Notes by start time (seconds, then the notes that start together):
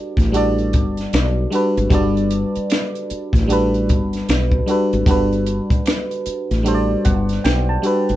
Already playing: G3 D4 F#4 A4 D5
0.17 A1, kick, snare, closed hi-hat
0.32 G3 D4 F#4 A4, closed hi-hat
0.37 D5
0.58 closed hi-hat
0.73 G1, kick, closed hi-hat
0.97 snare, closed hi-hat
1.13 B1, finger snap, snare, closed hi-hat
1.50 G3 D4 F#4 A4, closed hi-hat
1.55 B4
1.77 G#1, closed hi-hat
1.90 G1 G3 D4 F#4 A4, kick, closed hi-hat
1.94 D5
2.17 closed hi-hat
2.31 closed hi-hat
2.55 muted fretless electric bass stroke, closed hi-hat
2.70 finger snap, snare, closed hi-hat
2.95 closed hi-hat
3.10 muted fretless electric bass stroke, closed hi-hat
3.33 A1, kick, snare, closed hi-hat
3.48 G3 D4 F#4 A4, closed hi-hat
3.53 B4
3.74 closed hi-hat
3.89 G1, kick, closed hi-hat
4.13 snare, closed hi-hat
4.29 B1, finger snap, snare, closed hi-hat
4.52 kick
4.66 G3 D4 F#4 A4, closed hi-hat
4.71 B4
4.93 G#1, closed hi-hat
5.06 G1 G3 D4 F#4 A4, kick, closed hi-hat
5.11 B4
5.33 closed hi-hat
5.46 closed hi-hat
5.70 muted fretless electric bass stroke, kick, closed hi-hat
5.86 finger snap, snare, closed hi-hat
6.11 closed hi-hat
6.26 muted fretless electric bass stroke, closed hi-hat
6.51 A1, snare, closed hi-hat
6.63 G3 D4 F#4 A4, closed hi-hat
6.68 C5
6.75 D5
7.05 G1 F#5, kick, closed hi-hat
7.29 snare, closed hi-hat
7.44 B1 G5, finger snap, snare, closed hi-hat
7.69 A5
7.82 G3 D4 F#4 A4, closed hi-hat
7.87 B4
8.09 G#1, closed hi-hat